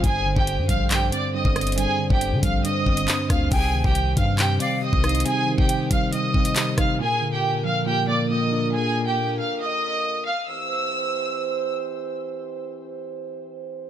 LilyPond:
<<
  \new Staff \with { instrumentName = "Violin section" } { \time 4/4 \key c \minor \tempo 4 = 138 <aes' aes''>8. <g' g''>8. <f'' f'''>8 <g' g''>8 <d'' d'''>8 <ees'' ees'''>4 | <aes' aes''>8. <g' g''>8. <f'' f'''>8 <ees'' ees'''>4. <f'' f'''>8 | <aes' aes''>8. <g' g''>8. <f'' f'''>8 <g' g''>8 <d'' d'''>8 <ees'' ees'''>4 | <aes' aes''>8. <g' g''>8. <f'' f'''>8 <ees'' ees'''>4. <f'' f'''>8 |
<aes' aes''>8. <g' g''>8. <f'' f'''>8 <g' g''>8 <d'' d'''>8 <ees'' ees'''>4 | <aes' aes''>8. <g' g''>8. <f'' f'''>8 <ees'' ees'''>4. <f'' f'''>8 | e'''2. r4 | r1 | }
  \new Staff \with { instrumentName = "Flute" } { \time 4/4 \key c \minor r1 | r1 | g''4 r4. f''8 r4 | r1 |
r1 | r1 | r1 | r1 | }
  \new Staff \with { instrumentName = "French horn section" } { \time 4/4 \key c \minor << { <d c''>1~ | <d c''>1 | <ees ees' c''>1~ | <ees ees' c''>1 |
<d f' bes'>1~ | <d f' bes'>1 | <e c' g' c''>1~ | <e c' g' c''>1 | } \\ { c'1~ | c'1~ | c'1~ | c'1 |
bes1~ | bes1 | r1 | r1 | } >> }
  \new Staff \with { instrumentName = "Tine electric piano" } { \clef bass \time 4/4 \key c \minor g,8 d4 g8 g,8 c'8 g,8 d'8 | g,8 d4 g8 g,8 c'8 g,8 d'8 | c8 ees4 g8 c8 c'8 c8 ees'8 | c8 ees4 g8 c8 c'8 c8 ees'8 |
bes,8 d4 f8 bes,8 bes8 bes,8 d'8~ | d'2 r2 | r1 | r1 | }
  \new Staff \with { instrumentName = "808-style bass" } { \clef bass \time 4/4 \key c \minor g,,8. g,,8 g,16 bes,,4 r8. g,,8.~ | g,,16 r8 g,,8 d16 bes,,8 r8 g,,8 r8 d,8 | c,8 d,16 c,8. g,4 r8. c,8. | r1 |
r1 | r1 | r1 | r1 | }
  \new DrumStaff \with { instrumentName = "Drums" } \drummode { \time 4/4 <hh bd>8. bd16 hh8 <hh bd>8 <hc hh>8 hh8 r16 bd16 <hh ss>32 hh32 hh32 hh32 | hh8. bd16 hh8 <hh bd>8 hh8 bd16 hh16 <hc hh>8 <hh bd ss>8 | <hh bd>8. bd16 hh8 <hh bd>8 <hc hh>8 hh8 r16 bd16 <hh ss>32 hh32 hh32 hh32 | hh8. bd16 hh8 <hh bd>8 hh8 bd16 hh16 <hc hh>8 <hh bd ss>8 |
r4 r4 r4 r4 | r4 r4 r4 r4 | r4 r4 r4 r4 | r4 r4 r4 r4 | }
>>